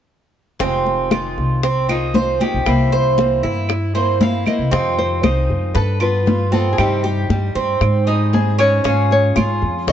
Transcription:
0.59 upright bass F1, steel-string acoustic guitar C3 D#3 G#3 C4 F4, cuban tres C4, high bongo, high conga
0.86 high bongo, high conga
1.11 steel-string acoustic guitar D#3 G#3 C4 F4, cuban tres F4, high bongo, high conga, claves
1.38 upright bass C2, high bongo
1.63 cuban tres C4, muted steel-string acoustic guitar stroke, high bongo, high conga
1.89 steel-string acoustic guitar D#3 G#3 C4 F4, cuban tres D#4, high conga, claves
2.14 steel-string acoustic guitar D#3 G#3 C4 F4, cuban tres C5, high bongo, low bongo, high conga
2.40 steel-string acoustic guitar D#3 G#3 C4 F4, cuban tres G4, high bongo, high conga
2.54 upright bass B1
2.66 upright bass C2, steel-string acoustic guitar C3 E3 A#3 C4 E4, high bongo, high conga, claves
2.92 cuban tres C5, high bongo, high conga
3.18 steel-string acoustic guitar E3 A#3 C4 E4, high bongo, high conga
3.43 upright bass G2, cuban tres E4, high bongo, high conga
3.69 muted steel-string acoustic guitar stroke, high bongo, high conga, claves
3.95 steel-string acoustic guitar E3 A#3 C4 E4, cuban tres C5, high conga
4.20 steel-string acoustic guitar E3 A#3 C4 E4, cuban tres E4, nylon-string guitar F5, high bongo, low bongo, high conga
4.46 steel-string acoustic guitar E3 A#3 C4 E4, nylon-string guitar D#5, high bongo, high conga, claves
4.59 upright bass C2
4.71 upright bass F2, steel-string acoustic guitar C3 D#3 G#3 C4 F4, cuban tres C4, high bongo, high conga
4.98 nylon-string guitar C5, high bongo, high conga
5.23 upright bass C2, steel-string acoustic guitar D#3 G#3 C4 F4, cuban tres D#4, nylon-string guitar C5, high bongo, high conga, claves
5.50 upright bass F#2, high bongo
5.75 upright bass G2, nylon-string guitar A4, cuban tres B4, muted steel-string acoustic guitar stroke, high bongo, high conga
6.00 steel-string acoustic guitar B3 F4, cuban tres F4, nylon-string guitar B4, high conga, claves
6.26 steel-string acoustic guitar G3 B3 F4, high bongo, low bongo, high conga
6.52 steel-string acoustic guitar B3 F4, cuban tres C4, nylon-string guitar A4, high bongo, high conga
6.73 nylon-string guitar G#4
6.78 upright bass G2, steel-string acoustic guitar C3 G3 C4 D#4 G4, nylon-string guitar G4, high bongo, high conga, claves
7.04 cuban tres G4, high bongo, high conga
7.29 upright bass G2, steel-string acoustic guitar G3 C4 D#4 G4, nylon-string guitar G4, high bongo, high conga
7.55 upright bass G2, cuban tres C4, high bongo, high conga
7.81 upright bass G#2, muted steel-string acoustic guitar stroke, high bongo, high conga, claves
8.07 steel-string acoustic guitar G3 C4 D#4 G#4, cuban tres D#4, high conga
8.33 steel-string acoustic guitar G3 C4 D#4 G#4, nylon-string guitar G#4, high bongo, low bongo, high conga
8.58 steel-string acoustic guitar G3 C4 D#4 G#4, cuban tres C#4, nylon-string guitar C#5, high bongo, claves
8.84 upright bass G#2, steel-string acoustic guitar C#3 G#3 C#4 F4 G#4, cuban tres C#4, high bongo, high conga
9.11 nylon-string guitar C#5, high bongo, high conga
9.36 upright bass G#2, steel-string acoustic guitar G#3 C#4 F4 G#4, cuban tres F4, high bongo, high conga, claves
9.62 upright bass F2, high bongo
9.87 upright bass A#1, cuban tres C#5, muted steel-string acoustic guitar stroke, high bongo, high conga

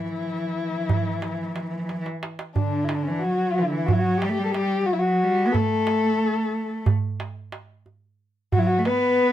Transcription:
Already playing: kamancheh E4
0.03 cello E3, darbuka ka
0.10 cello E3
0.18 cello E3
0.25 cello E3
0.32 cello E3
0.40 cello E3
0.47 cello E3
0.55 cello E3
0.62 cello E3
0.71 cello E3
0.78 cello E3
0.85 cello E3
0.89 cello E3, darbuka dum
1.00 cello E3
1.07 cello E3
1.15 cello E3
1.22 cello E3, darbuka tek
1.29 cello E3
1.38 cello E3
1.46 cello E3
1.54 cello E3, darbuka tek
1.61 cello E3
1.68 cello E3
1.77 cello E3
1.85 cello E3
1.89 cello E3, darbuka tek
1.98 cello E3
2.06 darbuka ka
2.23 darbuka tek
2.39 darbuka ka
2.55 cello D3, kamancheh D4, darbuka dum
2.84 kamancheh E4
2.89 darbuka tek
2.94 kamancheh D4
3.03 kamancheh C#4
3.07 cello E3, kamancheh D4
3.20 kamancheh F#4
3.24 cello F#3
3.54 kamancheh E4
3.58 cello E3
3.62 cello D3
3.72 cello E3
3.86 kamancheh F#4, darbuka dum
3.91 cello F#3, kamancheh E4
3.99 kamancheh F#4
4.18 kamancheh G4
4.22 cello G3, darbuka tek
4.29 cello A3, kamancheh G4
4.39 cello G3
4.45 kamancheh A4
4.52 kamancheh G4, darbuka tek
4.58 cello G3
4.81 cello G3
4.86 kamancheh F#4, darbuka ka
4.91 cello F#3, kamancheh E4
4.99 kamancheh F#4
5.23 cello G3
5.47 cello B3
5.53 cello A3, kamancheh A4, darbuka dum
5.87 darbuka tek
6.86 darbuka dum
7.20 darbuka tek
7.52 darbuka tek
7.86 darbuka ka
8.52 cello F#3, kamancheh F#4, darbuka dum
8.59 kamancheh E4
8.67 kamancheh F#4
8.78 cello A3
8.85 cello B3, kamancheh B4, darbuka tek

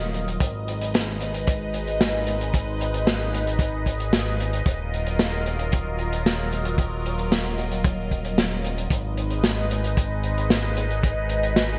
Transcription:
Already playing: analog synth bass D#1, analog synth pad F#3 F4 A#4 D#5
0.14 closed hi-hat
0.28 closed hi-hat
0.40 analog synth bass G#1, analog synth pad G#3 D#4 B4, kick, closed hi-hat
0.68 closed hi-hat
0.81 closed hi-hat
0.94 snare, closed hi-hat
1.21 closed hi-hat
1.34 closed hi-hat
1.47 kick, closed hi-hat
1.74 closed hi-hat
1.88 closed hi-hat
2.01 snare, closed hi-hat
2.27 closed hi-hat
2.41 closed hi-hat
2.54 kick, closed hi-hat
2.81 closed hi-hat
2.94 closed hi-hat
3.07 snare, closed hi-hat
3.34 closed hi-hat
3.47 closed hi-hat
3.59 kick, closed hi-hat
3.86 kick, closed hi-hat
4.00 closed hi-hat
4.13 snare, closed hi-hat
4.40 closed hi-hat
4.53 closed hi-hat
4.66 analog synth bass D#1, analog synth pad F#3 F4 A#4, kick, closed hi-hat
4.94 closed hi-hat
5.07 closed hi-hat
5.19 snare, closed hi-hat
5.46 closed hi-hat
5.59 closed hi-hat
5.72 kick, closed hi-hat
5.99 closed hi-hat
6.13 closed hi-hat
6.26 snare, closed hi-hat
6.53 closed hi-hat
6.65 closed hi-hat
6.78 kick, closed hi-hat
7.06 closed hi-hat
7.19 closed hi-hat
7.32 snare, closed hi-hat
7.58 closed hi-hat
7.71 closed hi-hat
7.84 kick, closed hi-hat
8.11 kick, closed hi-hat
8.25 closed hi-hat
8.38 snare, closed hi-hat
8.65 closed hi-hat
8.78 closed hi-hat
8.90 analog synth bass G#1, analog synth pad G#3 D#4 B4 D#5, kick, closed hi-hat
9.17 closed hi-hat
9.30 closed hi-hat
9.44 snare, closed hi-hat
9.71 closed hi-hat
9.84 closed hi-hat
9.97 kick, closed hi-hat
10.23 closed hi-hat
10.38 closed hi-hat
10.50 snare, closed hi-hat
10.77 closed hi-hat
10.90 closed hi-hat
11.03 kick, closed hi-hat
11.29 closed hi-hat
11.43 closed hi-hat
11.56 snare, closed hi-hat

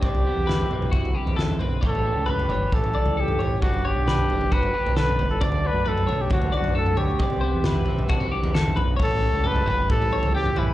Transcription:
Already playing: trumpet G4
0.01 fingered electric bass C2, clean electric guitar C3 C4 D5, kick, floor tom
0.15 floor tom
0.24 clean electric guitar B3 C5
0.36 fingered electric bass E2
0.47 clean electric guitar E4 B4, snare, mid tom
0.61 floor tom
0.70 fingered electric bass B1, clean electric guitar E3 C4, floor tom
0.82 mid tom
0.92 fingered electric bass C2, clean electric guitar E4 F#4, kick, floor tom
1.05 floor tom
1.15 clean electric guitar G2 G4
1.26 fingered electric bass E2, floor tom
1.36 clean electric guitar A4, snare
1.50 mid tom
1.59 fingered electric bass B1, clean electric guitar C4 B4, floor tom
1.81 fingered electric bass A1, clean electric guitar A2 E3 G3 C#4 G4 C#5, kick, floor tom
1.87 trumpet A4
1.95 floor tom
2.06 clean electric guitar G3
2.15 fingered electric bass C#2
2.26 clean electric guitar G4 B4, trumpet B4, mid tom
2.39 floor tom
2.49 fingered electric bass G1, clean electric guitar E3 C#4 C#5, floor tom, mid tom
2.72 fingered electric bass A1, clean electric guitar G4, trumpet A4, kick, floor tom
2.84 floor tom
2.94 clean electric guitar E2 D5, floor tom
3.06 fingered electric bass C#2, floor tom
3.17 trumpet G4, clean electric guitar A4
3.28 mid tom
3.38 fingered electric bass A1, clean electric guitar C#4 C#5, floor tom
3.62 fingered electric bass G1, clean electric guitar G2 D3 B3 D4 D5, trumpet F#4, kick, floor tom
3.74 floor tom
3.85 clean electric guitar B3 C#5, trumpet G4
3.96 fingered electric bass B1
4.07 clean electric guitar D4 B4, snare, mid tom
4.19 floor tom
4.28 fingered electric bass F#1, clean electric guitar D3 D4, floor tom
4.41 mid tom
4.51 fingered electric bass G1, clean electric guitar F#4 G4, trumpet B4, kick, floor tom
4.63 floor tom
4.74 clean electric guitar D3 G4
4.86 fingered electric bass B1, floor tom
4.97 clean electric guitar F#2 A4, trumpet B4, snare
5.09 mid tom
5.19 fingered electric bass G1, clean electric guitar E2 B4, floor tom
5.30 trumpet A4
5.40 clean electric guitar D2 D4 D5, fingered electric bass D2, trumpet D5, kick, floor tom
5.52 floor tom
5.65 clean electric guitar B3, trumpet B4
5.74 fingered electric bass F#2
5.85 clean electric guitar D4 B4, trumpet A4, mid tom
5.98 floor tom
6.07 fingered electric bass B1, clean electric guitar D3 D4 C#5, floor tom, mid tom
6.21 trumpet G4
6.30 fingered electric bass D2, clean electric guitar D4, trumpet F#4, kick, floor tom
6.42 floor tom
6.52 clean electric guitar A2 D5, trumpet F#4, floor tom
6.62 fingered electric bass F#2, floor tom
6.73 clean electric guitar A2 A4, trumpet A4
6.86 mid tom
6.96 fingered electric bass D2, clean electric guitar B2 C#5, trumpet G4, floor tom
7.19 fingered electric bass C2, clean electric guitar C3 C4 D5, kick, floor tom
7.30 floor tom
7.41 clean electric guitar B3 C5
7.54 fingered electric bass E2
7.64 clean electric guitar E4 B4, snare, mid tom
7.75 floor tom
7.86 fingered electric bass B1, clean electric guitar E3 C4, floor tom
7.99 mid tom
8.09 fingered electric bass C2, clean electric guitar D4 F#4, kick, floor tom
8.20 clean electric guitar E4, floor tom
8.32 clean electric guitar G2 G4
8.43 fingered electric bass E2, floor tom
8.54 clean electric guitar C3 A4, snare
8.66 mid tom
8.76 fingered electric bass B1, clean electric guitar B2 B4, floor tom
8.97 fingered electric bass A1, clean electric guitar A2 C#4 C#5, kick, floor tom
9.04 trumpet A4
9.11 floor tom
9.21 clean electric guitar G3
9.33 fingered electric bass C#2
9.44 clean electric guitar G4 A4, trumpet B4, mid tom
9.56 floor tom
9.66 fingered electric bass G1, clean electric guitar E3 C#4 B4, floor tom, mid tom
9.90 fingered electric bass A1, clean electric guitar G4, trumpet A4, kick, floor tom
10.02 floor tom
10.11 clean electric guitar E2 C#5, floor tom
10.23 fingered electric bass C#2, floor tom
10.35 clean electric guitar G4, trumpet G4
10.45 mid tom
10.56 fingered electric bass A1, clean electric guitar C#4 B4, trumpet E4, floor tom

